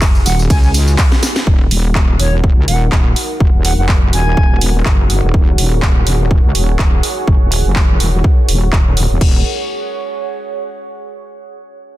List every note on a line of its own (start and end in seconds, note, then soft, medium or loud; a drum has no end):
0.00 0.24 F1 loud
0.00 1.43 D#4 medium
0.00 1.43 F#4 medium
0.00 1.43 G#4 medium
0.00 1.46 G#5 medium
0.00 kick loud
0.00 clap loud
0.00 ride medium
0.00 tambourine soft
0.15 tambourine soft
0.26 0.48 D#1 medium
0.26 0.40 F#5 medium
0.26 open hi-hat medium
0.26 tambourine medium
0.39 tambourine soft
0.50 0.97 C#2 loud
0.50 0.59 G#5 medium
0.50 kick loud
0.50 ride medium
0.50 tambourine soft
0.63 0.70 G#5 medium
0.63 tambourine soft
0.74 open hi-hat loud
0.74 tambourine medium
0.88 tambourine soft
0.98 kick loud
0.98 clap loud
0.98 ride medium
0.98 tambourine soft
1.12 snare medium
1.12 tambourine soft
1.23 snare medium
1.23 open hi-hat medium
1.23 tambourine medium
1.36 snare medium
1.36 tambourine soft
1.47 1.69 D#1 loud
1.47 9.17 D#4 medium
1.47 9.17 F#4 medium
1.47 9.20 G#4 medium
1.47 9.17 A#4 medium
1.47 9.17 F#5 medium
1.47 kick loud
1.71 2.18 D#1 loud
1.71 open hi-hat loud
1.82 9.21 F#5 medium
1.88 9.21 C#5 medium
1.95 kick loud
1.95 clap loud
2.19 2.55 D#1 medium
2.19 2.34 C#5 medium
2.19 open hi-hat medium
2.44 kick loud
2.57 2.66 C#2 loud
2.68 2.90 D#1 loud
2.68 2.82 F#5 medium
2.68 open hi-hat loud
2.92 3.14 D#1 medium
2.92 kick loud
2.92 clap loud
3.16 open hi-hat medium
3.40 3.51 F1 loud
3.40 kick loud
3.54 3.76 D#1 medium
3.65 3.73 F#5 medium
3.65 open hi-hat loud
3.78 4.11 F1 medium
3.78 3.85 F#5 medium
3.89 kick loud
3.89 clap loud
4.13 4.35 D#1 loud
4.13 4.61 G#5 medium
4.13 open hi-hat medium
4.37 4.84 D#1 medium
4.37 kick loud
4.61 open hi-hat loud
4.86 5.21 F#1 loud
4.86 kick loud
4.86 clap loud
5.10 open hi-hat medium
5.23 5.32 D#1 loud
5.34 5.56 D#1 loud
5.34 kick loud
5.58 6.05 D#1 loud
5.58 open hi-hat loud
5.82 kick loud
5.82 clap loud
6.07 6.42 D#1 medium
6.07 open hi-hat loud
6.31 kick loud
6.44 6.53 C#2 loud
6.55 6.77 D#1 loud
6.55 open hi-hat loud
6.79 7.02 D#1 loud
6.79 kick loud
6.79 clap loud
7.03 open hi-hat medium
7.28 7.39 F1 medium
7.28 kick loud
7.41 7.63 D#1 medium
7.52 open hi-hat loud
7.65 7.98 F1 loud
7.76 kick loud
7.76 clap loud
8.00 8.23 D#1 medium
8.00 open hi-hat medium
8.24 kick loud
8.49 8.71 D#1 loud
8.49 open hi-hat loud
8.73 9.08 D#1 loud
8.73 kick loud
8.73 clap loud
8.97 open hi-hat medium
9.10 9.19 D#1 loud
9.21 9.44 D#1 loud
9.21 11.11 G#4 medium
9.21 kick loud
9.21 crash medium
9.29 11.11 C#5 medium
9.36 11.11 F#5 medium